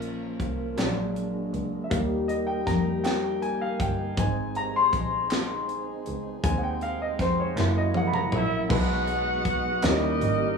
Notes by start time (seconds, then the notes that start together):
Already playing: A#1 F3 A#3 C#4 F4 A#4
0.02 closed hi-hat
0.40 C2, kick, closed hi-hat
0.76 A#1 F#3 G#3 A#3 D4 F#4 G#4, snare, clap, closed hi-hat
1.16 closed hi-hat
1.54 C#2, closed hi-hat
1.84 E5
1.89 D#2 G3 A#3 D#4 G4 A#4 F5, kick, closed hi-hat
2.28 D#5, closed hi-hat
2.47 G5
2.67 F2 A#5, kick, snare, closed hi-hat
3.04 G5, snare, clap, closed hi-hat
3.42 G#5, closed hi-hat
3.61 F5
3.80 G1 G5, kick, closed hi-hat
4.16 G#1 G#3 C4 D#4 G#4 C5 G#5, kick, closed hi-hat
4.55 A#5, closed hi-hat
4.76 C6
4.93 A#1, kick, closed hi-hat
5.30 snare, clap, closed hi-hat
5.69 closed hi-hat
6.06 C#2, closed hi-hat
6.43 D#2 G#3 C4 D#4 B4 G#5, kick, closed hi-hat
6.51 C5
6.58 F#5
6.63 G5
6.81 F5, closed hi-hat
7.02 D#5
7.19 F2 C5, kick, snare, closed hi-hat
7.40 C#5
7.56 F#1 F#3 G#3 A#3 C#4 E4 F#4 A4, snare, clap
7.63 A#4
7.77 D#5
7.94 F#5, high tom
8.07 B5
8.14 A#5, mid tom
8.32 A#1 E4 E5, mid tom
8.69 B1 B2 F#3 G#3 B3 C#4 D#4 F#4 G#4 B4, kick, crash
8.73 D#4 F#4 D#5 F#5
9.08 closed hi-hat
9.45 kick, closed hi-hat
9.82 D#2 D#3 G3 A#3 C#4 D#4 E4 G4 A#4 D#5, snare, clap, closed hi-hat
10.21 G#1, closed hi-hat